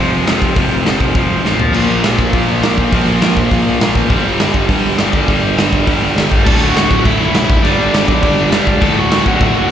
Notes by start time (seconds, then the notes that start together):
Already playing: F2 C3 F3
0.13 F1
0.26 F1 F2 C3 F3, snare, open hi-hat
0.42 F1, kick
0.56 F1 F2 C3 F3, kick, open hi-hat
0.72 F1
0.85 F1 F2 C3 F3, snare, open hi-hat
1.00 F1, kick
1.14 F1 F2 C3 F3, kick, open hi-hat
1.30 F1
1.44 A1 F2 C3 F3, snare
1.59 A#1, floor tom
1.74 A#1 A#2 F3 A#3, crash
1.89 A#1
2.03 A#1 A#2 F3 A#3, snare, open hi-hat
2.19 A#1, kick
2.33 A#2 F3 A#3, kick, open hi-hat
2.48 A#1
2.62 A#1 A#2 F3 A#3, snare, open hi-hat
2.78 A#1, kick
2.91 A#1 A#2 F3 A#3, kick, open hi-hat
3.07 A#1
3.21 A#1 A#2 F3 A#3, snare, open hi-hat
3.37 A#1, kick
3.51 A#1 A#2 F3 A#3, kick, open hi-hat
3.66 A#1
3.80 A#1 A#2 F3 A#3, snare, open hi-hat
3.95 A1, kick
4.09 G1 G2 D3 G3, kick, open hi-hat
4.24 G1
4.39 G1 G2 D3 G3, snare, open hi-hat
4.54 G1, kick
4.69 G2 D3 G3, kick, open hi-hat
4.84 G1
4.98 G1 G2 D3 G3, snare, open hi-hat
5.13 G1, kick
5.28 G1 G2 D3 G3, kick, open hi-hat
5.43 G1
5.58 G1 G2 D3 G3, snare, open hi-hat
5.72 G1, kick
5.87 G1 G2 D3 G3, kick, open hi-hat
6.02 G1
6.16 G1 G2 D3 G3, snare, open hi-hat
6.32 G1, kick
6.45 D1 D2 A2 D3 A4 A5, kick, crash
6.60 D1 F#4 F#5
6.75 D1 D2 A2 D3, snare, crash
6.91 D1, kick
7.04 D1 D2 A2 D3 E4 E5, kick, crash
7.20 F#1
7.34 B1 D2 A2 D3, snare, crash
7.48 G1 G2 D3 G3, kick
7.63 G1 G2 D3 G3 D4 D5, crash
7.78 G1
7.92 G1 G2 D3 G3, snare, crash
8.07 B1 D4 D5, kick
8.22 G1 G2 D3 G3, kick, crash
8.37 G1
8.51 G2 D3 G3 D4 D5, snare, crash
8.67 C#2, kick
8.81 D1 D2 A2 D3 A4 A5, kick, crash
8.96 D1 F#4 F#5
9.10 D1 D2 A2 D3, snare, crash
9.26 D1 F#4 F#5, kick
9.40 D1 D2 A2 D3, kick, crash
9.54 F#1